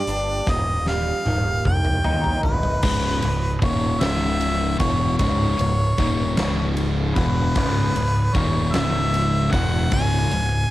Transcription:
0.00 0.48 G3 medium
0.00 0.48 A#3 medium
0.00 0.47 G4 medium
0.00 0.52 D5 medium
0.07 0.40 G1 medium
0.07 0.48 D4 medium
0.07 closed hi-hat medium
0.47 1.12 D#1 medium
0.47 2.45 D#2 medium
0.47 0.88 D#5 loud
0.47 kick loud
0.47 snare medium
0.86 2.84 G3 medium
0.86 1.62 F5 loud
0.86 snare medium
1.26 1.59 D#1 medium
1.26 2.84 D#3 medium
1.26 high tom medium
1.65 1.97 C2 medium
1.65 2.41 G5 loud
1.65 kick medium
1.65 mid tom medium
1.85 mid tom medium
2.04 2.37 D#2 medium
2.04 2.84 D#4 medium
2.04 mid tom medium
2.24 floor tom medium
2.43 2.77 D1 medium
2.43 3.58 B4 medium
2.43 floor tom medium
2.63 floor tom medium
2.83 3.20 C#1 medium
2.83 3.21 C#2 medium
2.83 3.22 G#2 medium
2.83 3.22 C#3 loud
2.83 kick loud
2.83 crash loud
3.22 3.60 C#1 medium
3.22 3.54 C#2 medium
3.22 3.55 G#2 medium
3.22 ride medium
3.61 3.99 D#1 medium
3.61 4.00 D#2 medium
3.61 4.00 A#2 medium
3.61 4.01 D#3 medium
3.61 4.02 C#5 medium
3.61 kick loud
3.61 ride medium
4.01 4.77 C#1 loud
4.01 4.79 C#2 loud
4.01 4.79 G#2 loud
4.01 4.80 C#3 loud
4.01 4.79 E5 loud
4.01 snare loud
4.01 ride loud
4.41 ride medium
4.80 5.17 E1 loud
4.80 5.18 E2 medium
4.80 5.18 B2 loud
4.80 5.19 E3 medium
4.80 5.17 C#5 medium
4.80 kick loud
4.80 ride medium
5.18 5.57 C#1 medium
5.18 5.57 C#2 medium
5.18 5.57 G#2 loud
5.18 5.58 C#3 loud
5.18 6.72 C#5 loud
5.18 kick loud
5.18 ride loud
5.58 5.96 C#1 medium
5.58 5.91 C#2 medium
5.58 5.90 G#2 medium
5.58 ride medium
5.98 6.35 D#1 medium
5.98 6.36 D#2 medium
5.98 6.37 A#2 medium
5.98 6.37 D#3 medium
5.98 kick medium
5.98 ride medium
6.37 7.13 C#1 loud
6.37 7.15 C#2 loud
6.37 7.15 G#2 loud
6.37 7.15 C#3 loud
6.37 snare loud
6.37 ride loud
6.77 ride medium
7.15 7.53 E1 medium
7.15 7.55 E2 medium
7.15 7.55 B2 loud
7.15 7.55 E3 loud
7.15 8.36 B4 loud
7.15 kick loud
7.15 ride medium
7.55 7.93 C#1 medium
7.55 7.93 C#2 medium
7.55 7.94 G#2 medium
7.55 7.95 C#3 loud
7.55 kick loud
7.55 crash medium
7.94 8.32 C#1 medium
7.94 8.26 C#2 medium
7.94 8.27 G#2 medium
7.94 ride medium
8.34 8.72 D#1 medium
8.34 8.72 D#2 medium
8.34 8.73 A#2 medium
8.34 8.73 D#3 loud
8.34 8.74 C#5 medium
8.34 kick loud
8.34 ride medium
8.73 9.49 C#1 loud
8.73 9.52 C#2 medium
8.73 9.52 G#2 loud
8.73 9.52 C#3 loud
8.73 9.53 E5 loud
8.73 snare loud
8.73 ride medium
9.14 ride medium
9.51 9.89 E1 medium
9.51 9.91 E2 medium
9.51 9.91 B2 medium
9.51 9.91 E3 loud
9.51 9.91 F#5 loud
9.51 kick loud
9.51 ride medium
9.91 10.29 C#1 medium
9.91 10.30 C#2 medium
9.91 10.30 G#2 medium
9.91 10.30 C#3 medium
9.91 10.71 G#5 loud
9.91 kick loud
9.91 ride loud
10.31 10.68 C#1 medium
10.31 10.63 C#2 medium
10.31 10.63 G#2 medium
10.31 ride medium

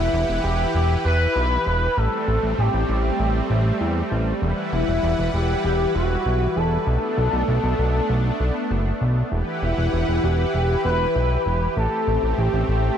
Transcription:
0.00 1.95 E3 medium
0.00 0.40 E4 loud
0.00 1.95 E4 medium
0.00 1.95 G4 medium
0.00 1.95 B4 loud
0.00 1.95 F#5 medium
0.13 0.24 E1 loud
0.29 0.40 E1 medium
0.43 0.66 E1 loud
0.43 0.72 G4 loud
0.74 0.96 E1 medium
0.74 1.03 G4 loud
1.05 1.27 E1 loud
1.05 1.99 B4 loud
1.36 1.58 B1 medium
1.66 1.88 E1 medium
1.97 2.08 A1 loud
1.97 6.83 G3 loud
1.97 4.40 A3 medium
1.97 4.39 C4 medium
1.97 2.52 A4 loud
2.28 2.39 A1 loud
2.43 2.54 A1 medium
2.52 2.60 A4 medium
2.58 2.69 A1 medium
2.58 2.88 G4 loud
2.74 2.84 A1 medium
2.89 3.11 A1 loud
2.89 3.77 G4 medium
3.19 3.41 A1 medium
3.50 3.72 A1 loud
3.81 4.03 E2 medium
4.11 4.33 A1 medium
4.42 4.53 E1 loud
4.42 6.84 E3 medium
4.42 6.84 E4 medium
4.42 6.84 B4 loud
4.42 6.84 F#5 medium
4.73 4.84 E1 loud
4.73 5.30 E4 loud
4.88 4.99 E1 medium
5.03 5.14 E1 loud
5.18 5.29 E1 medium
5.34 5.56 E1 loud
5.34 5.62 G4 medium
5.64 5.86 E1 medium
5.64 5.93 G4 loud
5.95 6.17 E1 loud
5.95 6.58 F#4 loud
6.26 6.47 B1 medium
6.56 6.78 E1 medium
6.56 9.01 A4 loud
6.87 6.98 B1 loud
6.87 9.29 A3 medium
6.87 9.29 B3 medium
6.87 9.29 D4 medium
7.18 7.28 B1 loud
7.33 7.44 B1 medium
7.48 7.59 B1 loud
7.64 7.74 B1 loud
7.79 8.01 B1 loud
8.09 8.31 B1 medium
8.40 8.51 B1 medium
8.71 8.92 F#1 loud
9.01 9.23 B1 medium
9.32 9.43 E1 loud
9.32 11.74 E3 medium
9.32 11.74 E4 medium
9.32 12.98 G4 medium
9.32 11.74 B4 loud
9.32 11.74 F#5 medium
9.62 9.73 E1 loud
9.62 10.25 E4 loud
9.78 9.89 E1 medium
9.93 10.04 E1 loud
10.08 10.19 E1 medium
10.24 10.45 E1 loud
10.24 10.54 G4 loud
10.54 10.76 E1 medium
10.54 10.83 G4 loud
10.85 11.07 E1 loud
10.85 11.73 B4 loud
11.15 11.37 B1 medium
11.46 11.68 E1 medium
11.77 11.88 A1 loud
11.77 12.98 A3 medium
11.77 12.98 C4 medium
11.77 12.40 A4 loud
12.07 12.18 A1 loud
12.23 12.33 A1 medium
12.38 12.49 A1 loud
12.38 12.68 G4 loud
12.53 12.64 A1 medium
12.68 12.90 A1 loud
12.68 12.98 G4 loud

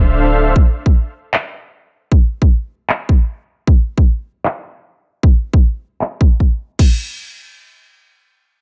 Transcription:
0.00 0.54 D1 medium
0.00 0.54 D4 medium
0.00 0.54 A4 medium
0.00 0.54 C5 medium
0.00 0.54 E5 medium
0.00 0.54 F5 loud
0.56 kick loud
0.86 kick loud
1.34 clap loud
2.12 kick loud
2.42 kick medium
2.89 clap loud
3.09 kick medium
3.67 kick loud
3.98 kick medium
4.45 clap loud
5.23 kick loud
5.53 kick medium
6.01 clap loud
6.21 kick medium
6.40 kick medium
6.79 kick loud
6.79 crash medium

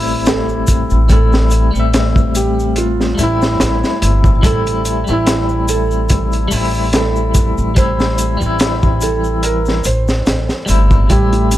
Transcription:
0.00 0.87 A1 medium
0.00 1.04 G3 medium
0.00 1.05 A3 medium
0.00 1.07 C4 medium
0.00 1.08 E4 loud
0.00 sub drop medium
0.07 shaker soft
0.26 1.03 A4 medium
0.26 snare loud
0.26 closed hi-hat medium
0.26 shaker medium
0.49 shaker soft
0.67 kick medium
0.67 closed hi-hat medium
0.67 shaker medium
0.90 1.70 A1 medium
0.90 shaker soft
1.08 1.68 G3 medium
1.08 1.69 A3 medium
1.08 1.70 C4 medium
1.08 1.69 A4 loud
1.08 kick loud
1.08 closed hi-hat medium
1.08 shaker medium
1.13 1.71 E4 medium
1.33 snare medium
1.33 shaker soft
1.50 closed hi-hat medium
1.50 shaker medium
1.71 3.15 A1 medium
1.71 3.13 G3 medium
1.71 3.14 A3 medium
1.75 3.15 C4 medium
1.75 shaker soft
1.80 3.17 E5 loud
1.94 snare loud
1.94 closed hi-hat medium
1.94 shaker medium
2.16 kick loud
2.16 shaker soft
2.35 2.74 G4 medium
2.35 closed hi-hat medium
2.35 shaker loud
2.59 shaker soft
2.76 3.15 F4 medium
2.76 closed hi-hat medium
2.76 shaker medium
3.01 snare soft
3.01 shaker soft
3.15 3.56 A1 medium
3.15 4.37 G3 medium
3.15 4.39 A3 medium
3.15 closed hi-hat medium
3.15 shaker medium
3.20 4.40 C4 medium
3.20 4.29 E4 medium
3.20 4.42 E4 loud
3.42 snare soft
3.42 shaker soft
3.60 3.81 A1 medium
3.60 snare loud
3.60 closed hi-hat medium
3.60 shaker medium
3.84 snare soft
3.84 shaker soft
4.02 4.39 G1 medium
4.02 closed hi-hat medium
4.02 shaker medium
4.24 kick loud
4.24 shaker soft
4.42 5.04 A1 loud
4.42 5.02 G3 medium
4.42 5.03 A3 medium
4.42 5.03 C4 medium
4.42 5.02 A4 loud
4.42 kick loud
4.42 closed hi-hat medium
4.42 shaker medium
4.47 5.04 E4 loud
4.66 closed hi-hat soft
4.66 shaker soft
4.85 closed hi-hat medium
4.85 shaker loud
5.04 6.46 G3 medium
5.04 6.48 A3 medium
5.04 shaker soft
5.09 6.49 A1 medium
5.09 6.49 C4 medium
5.09 5.64 E4 medium
5.13 6.51 E4 medium
5.27 snare loud
5.27 closed hi-hat loud
5.27 shaker medium
5.49 shaker soft
5.68 6.27 A4 medium
5.68 closed hi-hat medium
5.68 shaker loud
5.91 shaker soft
6.09 kick loud
6.09 closed hi-hat medium
6.09 shaker medium
6.32 closed hi-hat soft
6.32 shaker soft
6.48 7.54 A1 medium
6.48 7.71 G3 medium
6.48 7.72 A3 medium
6.48 shaker loud
6.52 7.74 C4 medium
6.52 open hi-hat medium
6.57 7.75 E4 loud
6.74 shaker soft
6.93 7.70 A4 medium
6.93 snare loud
6.93 closed hi-hat medium
6.93 shaker medium
7.16 shaker soft
7.34 kick medium
7.34 closed hi-hat medium
7.34 shaker medium
7.58 8.37 A1 medium
7.58 shaker soft
7.75 8.35 G3 medium
7.75 8.36 A3 medium
7.75 8.37 C4 medium
7.75 8.35 C5 medium
7.75 kick loud
7.75 closed hi-hat medium
7.75 shaker soft
7.79 8.37 E4 medium
8.00 snare medium
8.00 shaker soft
8.18 closed hi-hat medium
8.18 shaker medium
8.37 9.81 E3 medium
8.37 9.79 G3 medium
8.41 9.82 A1 medium
8.41 9.82 C4 medium
8.41 shaker soft
8.46 9.84 E4 loud
8.59 snare loud
8.59 closed hi-hat medium
8.59 shaker medium
8.82 kick loud
8.82 shaker soft
9.01 9.40 A4 medium
9.01 closed hi-hat medium
9.01 shaker medium
9.24 shaker soft
9.43 9.82 A#4 medium
9.43 closed hi-hat medium
9.43 shaker soft
9.65 snare soft
9.65 shaker soft
9.84 10.23 A1 medium
9.84 10.96 C5 medium
9.84 closed hi-hat medium
9.84 shaker loud
10.08 snare soft
10.08 shaker soft
10.26 10.47 A1 medium
10.26 snare loud
10.26 closed hi-hat medium
10.26 shaker medium
10.49 snare soft
10.49 shaker soft
10.66 11.06 G1 medium
10.66 11.04 G3 medium
10.66 11.05 A3 medium
10.66 11.06 C4 medium
10.66 closed hi-hat medium
10.66 shaker medium
10.70 11.07 E4 loud
10.91 kick loud
10.91 shaker soft
11.08 11.58 A1 medium
11.08 11.58 G3 medium
11.08 11.32 G3 medium
11.08 11.58 A3 medium
11.08 11.58 C4 medium
11.08 11.58 G4 loud
11.08 kick loud
11.08 closed hi-hat medium
11.08 shaker medium
11.12 11.58 E4 medium
11.33 11.50 A3 medium
11.33 closed hi-hat soft
11.33 shaker soft
11.51 11.58 C4 medium
11.51 closed hi-hat medium
11.51 shaker loud

